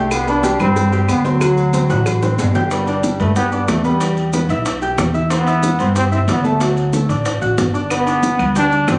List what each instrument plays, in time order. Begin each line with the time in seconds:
Already playing: upright bass C2, trombone A3, upright piano G4 G5 G6
0.11 trombone B3, cowbell, high conga, low agogo, claves, maracas
0.27 upright piano B3 B4 B5, trombone D4, high conga, maracas
0.43 upright piano G3 G4 G5, cowbell, high conga, low agogo, maracas
0.59 upright bass G2, upright piano C4 B4 B5, trombone C4, cowbell, high conga, low conga, low agogo, claves, maracas
0.76 cowbell, high conga, low conga, maracas
0.92 upright piano G3 G4 G5, low agogo, maracas
1.08 upright bass D2, trombone B3, cowbell, high conga, low agogo, claves, maracas
1.24 trombone F#3, upright piano C4 C5 C6, cowbell, high conga, maracas
1.40 upright piano F#3 F#4 F#5, cowbell, high conga, low agogo, claves, maracas
1.57 high conga, low agogo, maracas
1.73 upright piano C4 C5 C6, cowbell, high conga, low agogo, maracas
1.89 upright bass A1, upright piano F#4 F#5 F#6, cowbell, high timbale, maracas
2.06 cowbell, high conga, low agogo, claves, maracas
2.22 upright piano C4 C5 C6, cowbell, high bongo, high conga, maracas
2.38 upright bass G1, cowbell, high conga, low timbale, low agogo, maracas
2.55 upright piano G4 G5 G6, low bongo, high conga, low timbale, low agogo, maracas
2.71 trombone G3, upright piano B3 B4 B5, high bongo, high conga, high timbale, maracas
2.87 upright piano D4 D5 D6, high bongo, high conga, high timbale, maracas
3.03 high bongo, high conga, maracas
3.19 upright bass G2, trombone A3, upright piano B3 B4 B5, high conga, low conga, high timbale, maracas
3.36 trombone B3, upright piano G4 G5 G6, high bongo, high conga, high timbale, maracas
3.52 trombone B3, upright piano D4 D5 D6, high bongo, high conga, maracas
3.68 upright bass E2, trombone A3, high bongo, low bongo, high conga, high timbale, maracas
3.84 trombone G3, upright piano B3 B4 B5, high bongo, high conga, maracas
4.00 upright piano G3 G4 G5, high bongo, high timbale, maracas
4.17 high bongo, high conga, high timbale, maracas
4.33 upright piano B3 B4 B5, high bongo, high conga, maracas
4.49 upright bass B1, upright piano E4 E5 E6, high bongo, high timbale, maracas
4.66 high bongo, high conga, high timbale, maracas
4.82 upright piano G4 G5 G6, high bongo, high conga, maracas
4.98 upright bass E2, high bongo, low bongo, high conga, high timbale, maracas
5.14 upright piano E4 E5 E6, high conga, maracas
5.30 trombone B3, upright piano C4 C5 C6, high bongo, high conga, high timbale, maracas
5.47 upright piano E4 E5 E6, high bongo, high conga, high timbale, maracas
5.63 high bongo, high conga, maracas
5.79 upright bass G2, upright piano C4 C5 C6, high conga, low conga, high timbale, maracas
5.95 trombone C4, upright piano G4 G5 G6, high bongo, high timbale, maracas
6.12 trombone C4, upright piano E4 E5 E6, high bongo, high conga, maracas
6.28 upright bass D2, trombone B3, high bongo, low bongo, high conga, high timbale, low timbale, maracas
6.44 upright piano A3 A4 A5, trombone A3, high bongo, high conga, maracas
6.60 upright piano F#3 F#4 F#5, high bongo, high conga, high timbale, maracas
6.77 high bongo, high conga, high timbale, maracas
6.93 upright piano A3 A4 A5, high bongo, high conga, maracas
7.09 upright bass A1, upright piano D4 D5 D6, high bongo, high timbale, maracas
7.25 high bongo, high conga, high timbale, maracas
7.41 upright bass A1, upright piano F#4 F#5 F#6, high bongo, high conga, maracas
7.58 upright bass G1, high bongo, low bongo, high conga, high timbale, maracas
7.74 upright piano D4 D5 D6, high conga, maracas
7.90 upright piano B3 B4 B5, trombone B3, high bongo, high conga, high timbale, claves, maracas
8.06 upright piano D4 D5 D6, high bongo, high conga, high timbale, maracas
8.23 high bongo, high conga, maracas
8.39 upright bass D2, upright piano B3 B4 B5, high conga, low conga, high timbale, claves, maracas
8.55 trombone D4, upright piano G4 G5 G6, high bongo, high conga, low conga, high timbale, maracas
8.72 upright piano D4 D5 D6, high bongo, high conga, maracas
8.88 upright bass G1, trombone C4, high bongo, low bongo, high conga, high timbale, low timbale, claves, maracas